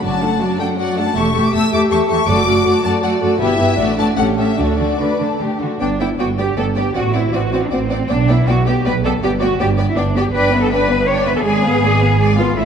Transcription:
0.03 F#1 F#2 F#3 F#4 D5 A5
0.22 A3 D4 A4 F#5
0.40 F#3 F#4 D5
0.59 A3 D4 A4 F#5 G5
0.78 F#3 F#4 D5 F#5
0.97 A3 D4 A4 F#5 A5
1.15 E1 E2 A3 G4 A4 E5 C#6
1.33 E2 A3 G4 A4 E5
1.45 D6
1.53 E2 A3 G4 A4 E5 E6
1.72 E2 A3 G4 A4 E5 D6
1.91 E2 A3 G4 A4 E5 C#6
2.09 E2 A3 G4 A4 E5 C#6
2.27 F#1 F#2 A3 F#4 A4 D5 D6
2.47 F#2 A3 F#4 A4 D5
2.65 F#2 A3 F#4 A4 D5
2.84 F#2 A3 F#4 A4 D5 A5
3.03 F#2 A3 F#4 A4 D5 F#5
3.22 F#2 A3 F#4 A4 D5
3.41 G1 G2 B3 E4 G4 B4 E5
3.60 G2 B3 E4 G4 B4
3.78 A1 A2 A3 D4 F#4 D5
3.97 A2 A3 D4 F#4 D5 A5
4.18 A1 A2 A3 C#4 G4 A4 F#5
4.38 A2 A3 C#4 G4 A4 E5
4.58 D2 D3 A3 D4 F#4 A4 D5
4.67 C#5
4.74 D5
4.79 D3 A3 D4 F#4 A4
4.99 D3 A3 D4 B4
5.20 D3 A3 D4 A4
5.40 D3 A3 D4 G4
5.61 D3 A3 D4 F#4
5.80 G1 B3 D4 D5 G5
6.00 B3 E4 D5 G5
6.19 G1 B3 F#4 D5 G5
6.38 B3 G4 D5 G5
6.57 G1 B3 A4 D5 G5
6.76 B3 G4 D5 G5
6.95 A1 C4 F#4 D5 F#5
7.13 C4 E4 D5 F#5
7.33 A1 C4 F#4 D5 F#5
7.52 C4 D5 F#5
7.64 D4
7.71 A1 C4 D5 F#5
7.90 C4 D5 F#5
8.09 B1 B3 D4 D5 G5
8.29 B3 E4 D5 G5
8.48 B1 B3 F#4 D5 G5
8.67 B3 G4 D5 G5
8.85 B1 B3 B4 D5 G5
9.04 B3 A4 D5 G5
9.23 G1 B3 G4 D5 G5
9.41 B3 F#4 D5 G5
9.60 G1 B3 G4 D5 G5
9.78 B3 D5 G5
9.89 E4
9.96 G1 B3 D4 D5 G5
10.16 B3 G4 D5 G5
10.34 G1 D4 B4 D5 G5
10.53 B3 B4 E5
10.62 A4
10.71 D4 B4 D5 G5
10.90 B3 B4 E5
11.08 D4 C#5 D5 G5
11.27 B3 B4 E5
11.36 A4
11.45 G#1 G#3 G#4 D5 G#5
11.64 B3 B4 F5
11.83 G#3 D5 G#5
12.01 B3 B4 F5
12.20 G#3 D5 G#5
12.37 B3 F4 B4 F5
12.56 A1 A3 E4 C#5 E5

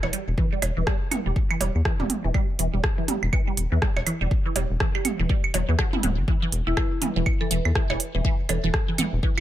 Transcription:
0.03 E1 E3, percussion blips, claves
0.13 G3, open hi-hat
0.28 E1
0.38 E3, kick
0.52 G3
0.62 E1, open hi-hat, percussion blips, high woodblock
0.77 E1 E3
0.87 G3, kick, cross-stick
1.11 E3, open hi-hat, mid tom, claves
1.26 E1 G3
1.36 kick
1.51 E3, claves, high woodblock
1.61 E1 G3, open hi-hat, percussion blips
1.75 E2
1.85 E3, kick, cross-stick
2.00 E1 G3, mid tom
2.10 open hi-hat, mid tom
2.24 E1 E3
2.34 G3, kick, high woodblock
2.59 E1 E3, open hi-hat
2.74 E1 G3
2.84 kick, cross-stick
2.98 E3
3.08 G3, open hi-hat, mid tom
3.23 E1, high woodblock
3.33 E3, kick, claves
3.47 G3
3.57 E1, open hi-hat
3.72 E2 E3
3.82 G3, kick, cross-stick
3.96 E1, percussion blips, claves
4.06 E3, open hi-hat, high woodblock
4.21 E1 G3
4.31 kick
4.46 E3
4.56 E1 G3, open hi-hat, percussion blips
4.70 E1
4.80 E3, kick, cross-stick
4.95 G3, high woodblock
5.05 open hi-hat, mid tom, claves
5.19 E1 E3
5.29 G3, kick
5.44 claves
5.54 E1 F#3, open hi-hat, percussion blips
5.69 E2 E3
5.79 F#3, kick, cross-stick, high woodblock
5.93 E4, mid tom
6.03 D1 F#3, open hi-hat, mid tom
6.18 G1
6.28 E3, kick
6.42 E3
6.52 E1, open hi-hat
6.67 E1 E3 E4
6.77 E3 E4, kick, cross-stick, high woodblock
7.02 E3, open hi-hat, mid tom
7.16 E1 E3
7.26 kick, claves
7.41 E3 A4
7.51 E1 E3, open hi-hat
7.65 E2, high woodblock
7.75 E3, kick, cross-stick
7.90 E1 E3, percussion blips, claves
8.00 open hi-hat
8.15 E1 E3
8.25 E3, kick
8.49 E1 E3 A4, open hi-hat, percussion blips, high woodblock
8.64 E1 E3 A4
8.74 kick, cross-stick
8.88 E3
8.98 E3, open hi-hat, mid tom, claves
9.13 E1
9.23 E3, kick

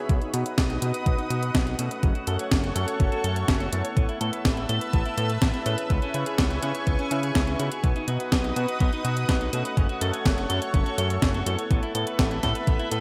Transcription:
Already playing: B3 D#4 F#4 B4
0.09 B1 B3 B4 D#5 F#5 D#6, kick, closed hi-hat
0.21 D#4, closed hi-hat
0.34 B2 B3 D#4 F#4 B4, closed hi-hat
0.46 B4, closed hi-hat
0.58 B1 B3, kick, snare, closed hi-hat
0.70 D#4, closed hi-hat
0.82 B2 B3 D#4 F#4 B4, closed hi-hat
0.94 B4, closed hi-hat
1.06 B1 B3, kick, closed hi-hat
1.18 D#4, closed hi-hat
1.30 B2 B3 D#4 F#4 B4, closed hi-hat
1.42 B4, closed hi-hat
1.55 B1 B3, kick, snare, closed hi-hat
1.67 D#4, closed hi-hat
1.79 B2 A3 C#4 F#4 A4, closed hi-hat
1.91 B4, closed hi-hat
2.03 F#1 C#4 A4 C#5 C#6, kick, closed hi-hat
2.15 F#4, closed hi-hat
2.27 F#2 A3 C#4 F#4 A4, closed hi-hat
2.39 C#5, closed hi-hat
2.51 F#1 C#4, kick, snare, closed hi-hat
2.63 F#4, closed hi-hat
2.76 F#2 A3 C#4 F#4 A4, closed hi-hat
2.88 C#5, closed hi-hat
3.00 F#1 C#4, kick, closed hi-hat
3.12 F#4, closed hi-hat
3.24 F#2 A3 C#4 F#4 A4, closed hi-hat
3.36 C#5, closed hi-hat
3.48 F#1 C#4, kick, snare, closed hi-hat
3.60 F#4, closed hi-hat
3.72 F#2 A3 B3 E4 A4, closed hi-hat
3.84 C#5, closed hi-hat
3.96 A1 B3 B4 E5 A5 E6, kick, closed hi-hat
4.09 E4, closed hi-hat
4.21 A2 A3 B3 E4 A4, closed hi-hat
4.33 B4, closed hi-hat
4.45 A1 B3, kick, snare, closed hi-hat
4.57 E4, closed hi-hat
4.69 A2 A3 B3 E4 A4, closed hi-hat
4.81 B4, closed hi-hat
4.93 A1 B3, kick, closed hi-hat
5.06 E4, closed hi-hat
5.17 A2 A3 B3 E4 A4, closed hi-hat
5.30 B4, closed hi-hat
5.42 A1 B3, kick, snare, closed hi-hat
5.54 A3 B3 E4 A4, closed hi-hat
5.66 A2 C#4 E4 G#4 A4 B4, closed hi-hat
5.78 B4, closed hi-hat
5.90 C#2 B3 G#5 C#6, kick, closed hi-hat
6.02 C#4, closed hi-hat
6.14 C#3 C#4 E4 G#4 B4, closed hi-hat
6.26 G#4, closed hi-hat
6.38 C#2 B3, kick, snare, closed hi-hat
6.50 C#4, closed hi-hat
6.63 C#3 C#4 E4 G#4 B4, closed hi-hat
6.75 G#4, closed hi-hat
6.87 C#2 B3, kick, closed hi-hat
6.99 C#4, closed hi-hat
7.11 C#3 C#4 E4 G#4 B4, closed hi-hat
7.23 G#4, closed hi-hat
7.35 C#2 B3, kick, snare, closed hi-hat
7.47 C#4, closed hi-hat
7.59 C#3 B3 D#4 E4 F#4 B4, closed hi-hat
7.72 G#4, closed hi-hat
7.84 B1 B3 B4 D#5 F#5 D#6, kick, closed hi-hat
7.96 D#4, closed hi-hat
8.08 B2 B3 D#4 F#4 B4, closed hi-hat
8.20 B4, closed hi-hat
8.32 B1 B3, kick, snare, closed hi-hat
8.44 D#4, closed hi-hat
8.56 B2 B3 D#4 F#4 B4, closed hi-hat
8.68 B4, closed hi-hat
8.80 B1 B3, kick, closed hi-hat
8.93 D#4, closed hi-hat
9.05 B2 B3 D#4 F#4 B4, closed hi-hat
9.17 B4, closed hi-hat
9.29 B1 B3, kick, snare, closed hi-hat
9.41 D#4, closed hi-hat
9.53 B2 A3 C#4 F#4 A4, closed hi-hat
9.65 B4, closed hi-hat
9.77 F#1 C#4 A4 C#5 C#6, kick, closed hi-hat
9.89 F#4, closed hi-hat
10.01 F#2 A3 C#4 F#4 A4, closed hi-hat
10.13 C#5, closed hi-hat
10.25 F#1 C#4, kick, snare, closed hi-hat
10.38 F#4, closed hi-hat
10.50 F#2 A3 C#4 F#4 A4, closed hi-hat
10.62 C#5, closed hi-hat
10.74 F#1 C#4, kick, closed hi-hat
10.86 F#4, closed hi-hat
10.98 F#2 A3 C#4 F#4 A4, closed hi-hat
11.10 C#5, closed hi-hat
11.22 F#1 C#4, kick, snare, closed hi-hat
11.34 F#4, closed hi-hat
11.46 F#2 A3 B3 E4 A4, closed hi-hat
11.59 C#5, closed hi-hat
11.70 A1 B3 B4 E5 B5, kick, closed hi-hat
11.83 E4, closed hi-hat
11.95 A2 A3 B3 E4 A4, closed hi-hat
12.07 B4, closed hi-hat
12.19 A1 B3, kick, snare, closed hi-hat
12.31 E4, closed hi-hat
12.43 A2 A3 B3 E4 A4, kick, snare, closed hi-hat
12.55 B4, closed hi-hat
12.67 A1 B3, kick, closed hi-hat
12.79 E4, closed hi-hat
12.91 A2 A3 B3 E4 A4, closed hi-hat

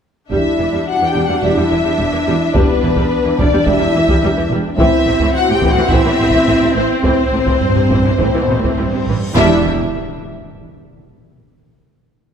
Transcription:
0.31 E1 E2 G3 D4 E4 E5, taiko
0.59 E1 E2 E3
0.72 E2 G3
0.88 F#4 F#5
1.01 E2 E3
1.06 G4 G5
1.14 E1 E2 G3
1.26 E2 G3 F#4 F#5
1.42 E1 E2 G3 D4 E5
1.48 E4
1.56 E2 G3
1.70 E1 E2 E3
1.84 E2 G3
1.99 E1 E2 G3
2.13 E2 E3
2.27 E1 E2 G3
2.53 E1 E2 G3 D4 B4, taiko
2.58 B3 B4
2.83 E1 E2 E3
2.96 E2 G3, taiko
3.25 E2 E3
3.38 E1 E2 G3 D4 D5, taiko
3.52 E2 G3
3.66 E1 E2 G3 D4 E4 E5, taiko
3.80 E2 G3
3.95 E1 E2 E3
4.08 E2 G3, taiko
4.22 E1 E2 G3
4.36 E2 E3
4.49 E1 E2 G3
4.77 A1 A2 E3 C4 E4 E5, taiko
5.06 A1 A2 C3
5.20 A2 E3, taiko
5.33 F#4 F#5
5.49 A2 C3 G4
5.53 G5
5.61 A1 A2 E3, taiko
5.71 F#4 F#5
5.75 A2 E3
5.88 A1 A2 E3 C4 E4 E5, taiko
6.05 A2 E3
6.19 A1 A2 C3
6.31 A2 E3, taiko
6.47 A1 A2 E3
6.61 A2 C3
6.73 A1 A2 E3 C4 C5
7.02 A1 A2 E3 C4 C5, taiko, reverse cymbal
7.32 A1 A2 C3
7.47 A2 E3, taiko
7.60 G2, taiko low-mid
7.75 C3, taiko low-mid
7.89 A1 E3, taiko
8.05 E3, taiko low-mid
8.19 A1 A2 E3 C4, taiko
8.35 E3
8.39 B2
8.48 A1 C3, taiko low-mid
8.58 A2
8.63 E3, taiko
8.78 A1 G2 E3
8.94 C3
9.08 A1 E3
9.34 E1 E2 G3 D4 E4 E5, impact

